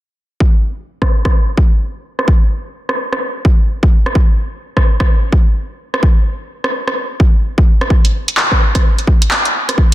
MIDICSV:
0, 0, Header, 1, 2, 480
1, 0, Start_track
1, 0, Tempo, 468750
1, 414, Time_signature, 4, 2, 24, 8
1, 10183, End_track
2, 0, Start_track
2, 0, Title_t, "Drums"
2, 414, Note_on_c, 9, 36, 110
2, 516, Note_off_c, 9, 36, 0
2, 1041, Note_on_c, 9, 36, 52
2, 1042, Note_on_c, 9, 37, 54
2, 1144, Note_off_c, 9, 36, 0
2, 1145, Note_off_c, 9, 37, 0
2, 1281, Note_on_c, 9, 36, 92
2, 1282, Note_on_c, 9, 37, 62
2, 1383, Note_off_c, 9, 36, 0
2, 1384, Note_off_c, 9, 37, 0
2, 1613, Note_on_c, 9, 36, 94
2, 1715, Note_off_c, 9, 36, 0
2, 2241, Note_on_c, 9, 37, 53
2, 2332, Note_on_c, 9, 36, 111
2, 2343, Note_off_c, 9, 37, 0
2, 2435, Note_off_c, 9, 36, 0
2, 2960, Note_on_c, 9, 37, 54
2, 3062, Note_off_c, 9, 37, 0
2, 3200, Note_on_c, 9, 37, 65
2, 3302, Note_off_c, 9, 37, 0
2, 3532, Note_on_c, 9, 36, 100
2, 3634, Note_off_c, 9, 36, 0
2, 3920, Note_on_c, 9, 36, 98
2, 4023, Note_off_c, 9, 36, 0
2, 4160, Note_on_c, 9, 37, 56
2, 4252, Note_on_c, 9, 36, 119
2, 4262, Note_off_c, 9, 37, 0
2, 4355, Note_off_c, 9, 36, 0
2, 4881, Note_on_c, 9, 36, 56
2, 4881, Note_on_c, 9, 37, 51
2, 4983, Note_off_c, 9, 36, 0
2, 4984, Note_off_c, 9, 37, 0
2, 5121, Note_on_c, 9, 36, 106
2, 5121, Note_on_c, 9, 37, 64
2, 5223, Note_off_c, 9, 36, 0
2, 5223, Note_off_c, 9, 37, 0
2, 5453, Note_on_c, 9, 36, 99
2, 5555, Note_off_c, 9, 36, 0
2, 6081, Note_on_c, 9, 37, 57
2, 6172, Note_on_c, 9, 36, 114
2, 6184, Note_off_c, 9, 37, 0
2, 6275, Note_off_c, 9, 36, 0
2, 6801, Note_on_c, 9, 37, 51
2, 6904, Note_off_c, 9, 37, 0
2, 7040, Note_on_c, 9, 37, 60
2, 7143, Note_off_c, 9, 37, 0
2, 7372, Note_on_c, 9, 36, 102
2, 7474, Note_off_c, 9, 36, 0
2, 7760, Note_on_c, 9, 36, 100
2, 7863, Note_off_c, 9, 36, 0
2, 8001, Note_on_c, 9, 37, 53
2, 8092, Note_on_c, 9, 36, 113
2, 8103, Note_off_c, 9, 37, 0
2, 8194, Note_off_c, 9, 36, 0
2, 8240, Note_on_c, 9, 42, 49
2, 8343, Note_off_c, 9, 42, 0
2, 8480, Note_on_c, 9, 42, 60
2, 8572, Note_on_c, 9, 39, 108
2, 8582, Note_off_c, 9, 42, 0
2, 8674, Note_off_c, 9, 39, 0
2, 8720, Note_on_c, 9, 36, 57
2, 8720, Note_on_c, 9, 37, 49
2, 8822, Note_off_c, 9, 36, 0
2, 8823, Note_off_c, 9, 37, 0
2, 8960, Note_on_c, 9, 36, 94
2, 8960, Note_on_c, 9, 37, 58
2, 8960, Note_on_c, 9, 42, 60
2, 9063, Note_off_c, 9, 36, 0
2, 9063, Note_off_c, 9, 37, 0
2, 9063, Note_off_c, 9, 42, 0
2, 9200, Note_on_c, 9, 42, 34
2, 9292, Note_on_c, 9, 36, 95
2, 9303, Note_off_c, 9, 42, 0
2, 9394, Note_off_c, 9, 36, 0
2, 9440, Note_on_c, 9, 42, 63
2, 9531, Note_on_c, 9, 39, 110
2, 9542, Note_off_c, 9, 42, 0
2, 9633, Note_off_c, 9, 39, 0
2, 9681, Note_on_c, 9, 42, 51
2, 9783, Note_off_c, 9, 42, 0
2, 9921, Note_on_c, 9, 37, 51
2, 9921, Note_on_c, 9, 42, 64
2, 10012, Note_on_c, 9, 36, 110
2, 10023, Note_off_c, 9, 37, 0
2, 10023, Note_off_c, 9, 42, 0
2, 10115, Note_off_c, 9, 36, 0
2, 10183, End_track
0, 0, End_of_file